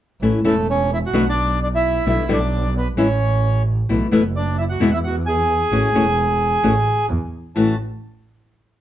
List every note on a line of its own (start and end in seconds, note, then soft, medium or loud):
0.21 0.41 A1 medium
0.21 0.39 E3 soft
0.21 0.39 A3 medium
0.21 0.39 C#4 medium
0.21 0.39 E4 medium
0.44 1.10 E1 medium
0.44 0.54 E3 medium
0.44 0.54 A3 medium
0.44 0.67 A3 medium
0.44 0.54 C#4 medium
0.44 0.54 E4 medium
0.44 0.67 A4 medium
0.70 0.90 C#4 medium
0.70 0.91 C#5 medium
0.93 0.98 E4 medium
0.93 0.99 E5 medium
1.06 1.26 F#4 medium
1.06 1.28 F#5 medium
1.13 2.01 B1 medium
1.13 1.23 B2 medium
1.13 1.23 D3 medium
1.13 1.23 A3 medium
1.13 1.23 B3 medium
1.13 1.23 F#4 medium
1.29 1.59 D4 medium
1.29 1.60 D5 medium
1.63 1.67 D4 medium
1.63 1.68 D5 medium
1.75 2.05 E4 medium
1.75 2.08 E5 medium
2.05 2.25 B1 medium
2.05 2.23 B2 soft
2.05 2.23 D3 medium
2.05 2.23 G3 medium
2.05 2.23 B3 medium
2.05 2.23 E4 medium
2.05 2.29 E4 medium
2.09 2.29 E5 medium
2.28 2.94 B1 medium
2.28 2.37 B2 medium
2.28 2.38 D3 medium
2.28 2.38 G3 medium
2.28 2.38 B3 medium
2.28 2.38 E4 medium
2.33 2.73 D4 medium
2.33 2.74 D5 medium
2.77 2.87 B3 soft
2.77 2.88 B4 medium
2.97 3.84 A1 medium
2.97 3.06 E3 medium
2.97 3.06 G#3 medium
2.97 3.07 C#4 medium
2.97 3.62 C#4 medium
2.97 3.07 E4 medium
2.97 3.63 C#5 medium
3.89 4.08 B1 medium
3.89 4.06 B2 medium
3.89 4.06 E3 medium
3.89 4.06 A3 soft
3.89 4.06 B3 medium
3.89 4.06 E4 medium
4.11 4.77 F#1 medium
4.11 4.20 B2 medium
4.11 4.21 E3 medium
4.11 4.21 A3 medium
4.11 4.21 B3 medium
4.11 4.24 B3 soft
4.11 4.21 E4 medium
4.11 4.24 B4 medium
4.36 4.57 D4 medium
4.36 4.57 D5 medium
4.58 4.65 E4 medium
4.58 4.63 E5 medium
4.69 4.89 F#4 medium
4.69 4.90 F#5 medium
4.80 5.67 E2 medium
4.80 4.89 B2 medium
4.80 4.89 E3 medium
4.80 4.89 G#3 medium
4.80 4.90 B3 medium
4.80 4.90 E4 medium
4.91 4.99 E4 medium
4.91 4.98 E5 medium
4.91 4.93 F#5 medium
5.04 5.16 F#4 medium
5.04 5.14 F#5 medium
5.26 7.06 G#4 medium
5.26 7.05 G#5 medium
5.71 5.91 A1 medium
5.71 5.88 E3 medium
5.71 5.89 A3 medium
5.71 5.89 C#4 medium
5.71 5.89 F#4 medium
5.94 6.59 E1 medium
5.94 6.04 E3 medium
5.94 6.04 A3 medium
5.94 6.04 C#4 medium
5.94 6.04 F#4 medium
6.63 6.82 A1 medium
6.63 6.72 E3 medium
6.63 6.72 A3 medium
6.63 6.73 C#4 medium
6.63 6.73 F#4 medium
7.09 7.28 E2 medium
7.55 7.74 A1 soft
7.55 7.74 A2 medium
7.55 7.74 E3 medium
7.55 7.74 A3 medium
7.55 7.74 C#4 medium
7.55 7.74 F#4 medium
7.55 7.77 A5 medium